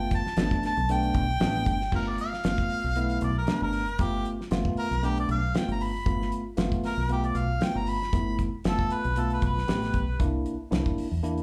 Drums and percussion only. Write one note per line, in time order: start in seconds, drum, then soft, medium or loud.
0.11 kick medium
0.11 closed hi-hat medium
0.26 snare soft
0.37 snare loud
0.37 closed hi-hat medium
0.51 kick medium
0.51 closed hi-hat soft
0.63 snare soft
0.63 closed hi-hat medium
0.77 closed hi-hat soft
0.89 closed hi-hat medium
1.03 closed hi-hat soft
1.14 kick medium
1.14 closed hi-hat medium
1.40 snare loud
1.40 closed hi-hat medium
1.55 closed hi-hat soft
1.66 kick medium
1.66 closed hi-hat medium
1.81 snare soft
1.92 kick loud
1.92 crash medium
2.18 closed hi-hat medium
2.33 snare soft
2.44 snare loud
2.44 closed hi-hat medium
2.58 kick medium
2.58 closed hi-hat soft
2.70 open hi-hat medium
2.96 closed hi-hat medium
3.10 closed hi-hat soft
3.21 closed hi-hat medium
3.47 snare loud
3.47 closed hi-hat medium
3.73 open hi-hat medium
3.87 closed hi-hat soft
3.99 kick loud
3.99 closed hi-hat medium
4.25 closed hi-hat medium
4.41 snare soft
4.51 snare loud
4.51 closed hi-hat medium
4.65 kick medium
4.77 open hi-hat medium
4.92 closed hi-hat soft
5.03 closed hi-hat medium
5.17 closed hi-hat soft
5.29 closed hi-hat medium
5.55 snare loud
5.55 closed hi-hat medium
5.69 closed hi-hat soft
5.81 open hi-hat medium
6.06 kick loud
6.06 closed hi-hat medium
6.22 snare soft
6.32 closed hi-hat medium
6.57 snare loud
6.57 closed hi-hat medium
6.72 kick medium
6.72 closed hi-hat soft
6.84 snare soft
6.84 open hi-hat medium
7.09 closed hi-hat medium
7.24 closed hi-hat soft
7.35 closed hi-hat medium
7.61 snare loud
7.61 closed hi-hat medium
7.87 open hi-hat medium
8.01 snare soft
8.01 closed hi-hat soft
8.13 kick loud
8.13 closed hi-hat medium
8.39 kick medium
8.39 closed hi-hat medium
8.64 snare loud
8.64 closed hi-hat medium
8.79 kick medium
8.90 closed hi-hat medium
9.04 closed hi-hat soft
9.16 closed hi-hat medium
9.30 closed hi-hat soft
9.42 kick medium
9.42 closed hi-hat medium
9.58 snare soft
9.68 snare loud
9.68 closed hi-hat medium
9.82 snare soft
9.82 closed hi-hat soft
9.94 kick medium
9.94 closed hi-hat medium
10.20 kick loud
10.20 closed hi-hat medium
10.46 closed hi-hat medium
10.72 snare loud
10.72 closed hi-hat medium
10.86 kick medium
10.86 closed hi-hat soft
10.98 open hi-hat medium
11.24 closed hi-hat medium
11.38 closed hi-hat soft